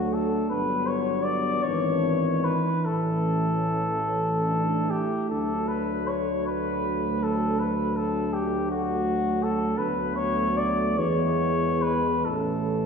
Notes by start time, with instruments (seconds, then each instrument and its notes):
Already playing: tuba D2, trombone F#3, euphonium A3, french horn section D4, cornet F#4
0.13 cornet A4
0.50 tuba G1, trombone F#3, euphonium B3, french horn section D4, cornet B4
0.87 cornet C#5
1.23 cornet D5
1.63 tuba G#1, trombone E3, cornet C#5
2.45 cornet B4
2.85 tuba A1, euphonium A3, french horn section C#4, cornet A4
4.08 french horn section C#4
4.49 french horn section D4
4.89 french horn section E4, cornet G4
5.29 tuba D2, trombone F#3, french horn section D4, cornet A4
5.68 cornet B4
6.08 cornet C#5
6.47 cornet B4
7.23 cornet A4
7.59 euphonium A3, cornet B4
7.97 cornet A4
8.33 cornet G4
8.71 cornet F#4
9.43 cornet A4
9.77 tuba D2, trombone F#3, euphonium A3, french horn section B3, cornet B4
10.16 cornet C#5
10.57 cornet D5
10.96 tuba E2, trombone E3, euphonium G#3, french horn section B3, cornet C#5
11.82 cornet B4
12.25 tuba A1, trombone E3, euphonium A3, french horn section C#4, cornet A4